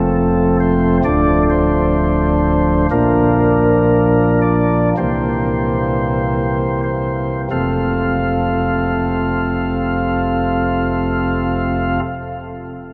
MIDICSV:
0, 0, Header, 1, 2, 480
1, 0, Start_track
1, 0, Key_signature, -1, "major"
1, 0, Tempo, 855920
1, 581, Tempo, 930233
1, 1541, Time_signature, 4, 2, 24, 8
1, 1541, Tempo, 996678
1, 2021, Tempo, 1077199
1, 2501, Tempo, 1212121
1, 2981, Tempo, 1321586
1, 5432, End_track
2, 0, Start_track
2, 0, Title_t, "Pipe organ"
2, 0, Program_c, 0, 19
2, 0, Note_on_c, 0, 29, 61
2, 0, Note_on_c, 0, 41, 53
2, 0, Note_on_c, 0, 53, 47
2, 0, Note_on_c, 0, 57, 42
2, 0, Note_on_c, 0, 60, 51
2, 0, Note_on_c, 0, 69, 97
2, 318, Note_off_c, 0, 69, 0
2, 337, Note_on_c, 0, 72, 106
2, 545, Note_off_c, 0, 72, 0
2, 561, Note_off_c, 0, 29, 0
2, 561, Note_off_c, 0, 41, 0
2, 561, Note_off_c, 0, 53, 0
2, 561, Note_off_c, 0, 60, 0
2, 562, Note_off_c, 0, 57, 0
2, 584, Note_on_c, 0, 26, 57
2, 584, Note_on_c, 0, 57, 46
2, 584, Note_on_c, 0, 62, 50
2, 585, Note_on_c, 0, 53, 51
2, 586, Note_on_c, 0, 38, 60
2, 586, Note_on_c, 0, 74, 114
2, 783, Note_off_c, 0, 74, 0
2, 820, Note_on_c, 0, 72, 96
2, 1521, Note_off_c, 0, 26, 0
2, 1522, Note_off_c, 0, 38, 0
2, 1522, Note_off_c, 0, 53, 0
2, 1522, Note_off_c, 0, 57, 0
2, 1522, Note_off_c, 0, 62, 0
2, 1522, Note_off_c, 0, 72, 0
2, 1546, Note_on_c, 0, 58, 48
2, 1547, Note_on_c, 0, 53, 46
2, 1548, Note_on_c, 0, 34, 51
2, 1548, Note_on_c, 0, 46, 58
2, 1548, Note_on_c, 0, 62, 51
2, 1548, Note_on_c, 0, 70, 105
2, 2239, Note_off_c, 0, 70, 0
2, 2255, Note_on_c, 0, 74, 96
2, 2464, Note_off_c, 0, 74, 0
2, 2485, Note_off_c, 0, 53, 0
2, 2485, Note_off_c, 0, 58, 0
2, 2486, Note_off_c, 0, 34, 0
2, 2486, Note_off_c, 0, 46, 0
2, 2486, Note_off_c, 0, 62, 0
2, 2502, Note_on_c, 0, 36, 52
2, 2502, Note_on_c, 0, 52, 51
2, 2503, Note_on_c, 0, 48, 54
2, 2503, Note_on_c, 0, 58, 48
2, 2503, Note_on_c, 0, 60, 49
2, 2504, Note_on_c, 0, 72, 94
2, 3207, Note_off_c, 0, 72, 0
2, 3219, Note_on_c, 0, 72, 72
2, 3425, Note_off_c, 0, 72, 0
2, 3449, Note_off_c, 0, 36, 0
2, 3449, Note_off_c, 0, 48, 0
2, 3449, Note_off_c, 0, 52, 0
2, 3449, Note_off_c, 0, 58, 0
2, 3449, Note_off_c, 0, 60, 0
2, 3462, Note_on_c, 0, 29, 45
2, 3463, Note_on_c, 0, 48, 40
2, 3463, Note_on_c, 0, 57, 41
2, 3463, Note_on_c, 0, 60, 43
2, 3463, Note_on_c, 0, 65, 43
2, 3464, Note_on_c, 0, 41, 50
2, 3464, Note_on_c, 0, 69, 39
2, 3464, Note_on_c, 0, 77, 53
2, 5090, Note_off_c, 0, 29, 0
2, 5090, Note_off_c, 0, 48, 0
2, 5091, Note_off_c, 0, 57, 0
2, 5091, Note_off_c, 0, 60, 0
2, 5091, Note_off_c, 0, 65, 0
2, 5092, Note_off_c, 0, 41, 0
2, 5092, Note_off_c, 0, 69, 0
2, 5092, Note_off_c, 0, 77, 0
2, 5432, End_track
0, 0, End_of_file